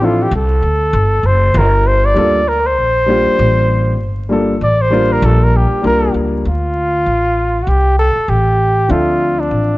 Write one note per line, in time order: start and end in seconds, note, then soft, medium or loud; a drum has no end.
0.00 0.29 A1 medium
0.00 0.24 F3 medium
0.00 0.24 C4 medium
0.00 0.25 D4 medium
0.00 0.25 E4 medium
0.00 0.26 A4 medium
0.05 0.24 F4 medium
0.22 0.34 G4 medium
0.31 0.61 C2 loud
0.35 1.28 A4 medium
0.62 0.92 D2 medium
0.93 1.22 G1 loud
1.23 1.53 F#1 medium
1.23 1.59 C5 loud
1.54 2.13 G1 loud
1.54 1.89 A#4 loud
1.87 2.07 C5 loud
2.05 2.50 D5 loud
2.14 2.78 D2 loud
2.14 2.38 G3 medium
2.14 2.39 A#3 medium
2.14 2.39 D4 medium
2.14 2.39 F4 medium
2.14 2.40 A4 medium
2.48 2.68 A#4 loud
2.66 4.18 C5 loud
2.78 3.23 A#1 loud
3.06 3.94 G3 medium
3.06 3.94 A#3 medium
3.06 3.95 D4 medium
3.06 3.95 F4 medium
3.06 3.95 G4 medium
3.26 muted upright bass stroke soft
3.39 4.00 A1 loud
4.00 4.58 G1 loud
4.29 4.52 G3 medium
4.29 4.53 A#3 medium
4.29 4.53 D4 medium
4.29 4.54 F4 medium
4.29 4.54 A4 medium
4.61 5.19 A1 medium
4.61 4.83 D5 loud
4.82 5.14 C5 loud
4.90 5.78 G3 medium
4.90 5.78 A#3 medium
4.90 5.78 D4 medium
4.90 5.79 F4 medium
4.90 5.79 A#4 medium
5.12 5.27 A#4 loud
5.22 5.68 A#1 loud
5.22 5.45 A4 medium
5.44 5.58 A#4 medium
5.57 5.85 G4 medium
5.71 muted upright bass stroke soft
5.82 6.13 C2 loud
5.82 6.44 G3 medium
5.82 6.44 A#3 medium
5.82 6.45 D4 medium
5.82 6.45 F4 medium
5.82 6.46 A#4 medium
5.87 6.14 A#4 medium
6.14 6.43 C#2 medium
6.45 7.03 D2 loud
6.45 7.64 F4 medium
7.06 7.64 A1 medium
7.62 7.70 F#4 medium
7.67 8.13 C2 loud
7.67 7.98 G4 medium
7.99 8.31 A4 loud
8.16 muted upright bass stroke soft
8.28 8.86 A1 medium
8.28 8.92 G4 loud
8.88 9.48 D2 loud
8.88 9.75 F3 medium
8.88 9.76 C4 soft
8.88 9.76 D4 medium
8.88 9.41 F4 loud
8.88 9.77 A4 medium
8.88 9.77 E5 medium
9.40 9.78 D4 medium
9.51 9.78 A1 medium